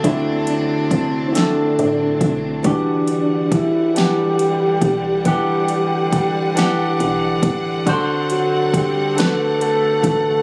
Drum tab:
HH |xxxxxx|xxxxxx|xxxxxx|xxxxxx|
SD |---o--|---o--|---o--|---o--|
BD |o-o--o|o-o--o|o-o--o|o-o--o|